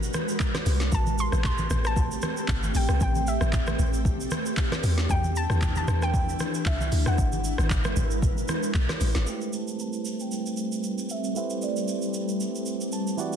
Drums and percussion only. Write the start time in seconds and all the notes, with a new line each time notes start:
0.03 shaker
0.13 cross-stick, high conga, shaker
0.29 shaker
0.40 kick, clap, shaker
0.54 cross-stick, snare, high conga, shaker
0.66 open hi-hat, shaker
0.80 snare, shaker
0.92 kick, shaker
1.06 high conga, shaker
1.19 shaker
1.32 cross-stick, high conga, shaker
1.44 kick, clap, low conga, shaker
1.58 high conga, shaker
1.70 cross-stick, high conga, low conga, shaker
1.85 cross-stick, shaker
1.96 kick, low conga, shaker
2.11 shaker
2.22 cross-stick, high conga, shaker
2.37 shaker
2.48 kick, clap, shaker
2.63 high conga, shaker
2.75 open hi-hat, shaker
2.89 cross-stick, shaker
3.01 kick, shaker
3.15 high conga, shaker
3.27 shaker
3.41 cross-stick, high conga, shaker
3.53 kick, clap, low conga, shaker
3.67 cross-stick, high conga, shaker
3.79 high conga, low conga, shaker
3.93 shaker
4.05 kick, low conga, shaker
4.20 shaker
4.31 cross-stick, high conga, shaker
4.46 shaker
4.57 kick, clap, shaker
4.72 cross-stick, snare, high conga, shaker
4.83 open hi-hat, shaker
4.98 snare, shaker
5.10 kick, shaker
5.24 high conga, shaker
5.36 shaker
5.50 cross-stick, high conga, shaker
5.62 kick, clap, low conga, shaker
5.76 high conga, shaker
5.88 cross-stick, high conga, low conga, shaker
6.02 cross-stick, shaker
6.14 kick, low conga, shaker
6.29 shaker
6.39 cross-stick, high conga, shaker
6.54 shaker
6.66 kick, clap, shaker
6.80 high conga, shaker
6.92 open hi-hat, shaker
7.06 cross-stick, shaker
7.18 kick, shaker
7.32 high conga, shaker
7.44 shaker
7.58 cross-stick, high conga, shaker
7.70 kick, clap, low conga, shaker
7.84 cross-stick, high conga, shaker
7.96 high conga, low conga, shaker
8.11 shaker
8.22 kick, low conga, shaker
8.38 shaker
8.48 cross-stick, high conga, shaker
8.63 shaker
8.74 kick, clap, shaker
8.89 cross-stick, snare, high conga, shaker
9.01 open hi-hat, shaker
9.15 snare, shaker
9.27 shaker
9.41 shaker
9.53 shaker
9.67 shaker
9.79 shaker
9.93 shaker
10.05 shaker
10.20 shaker
10.32 shaker
10.46 shaker
10.57 shaker
10.72 shaker
10.83 shaker
10.98 shaker
11.10 shaker
11.24 shaker
11.36 shaker
11.50 shaker
11.62 shaker
11.76 shaker
11.88 shaker
12.02 shaker
12.14 shaker
12.28 shaker
12.40 shaker
12.55 shaker
12.66 shaker
12.81 shaker
12.92 shaker
13.07 shaker
13.18 shaker
13.33 shaker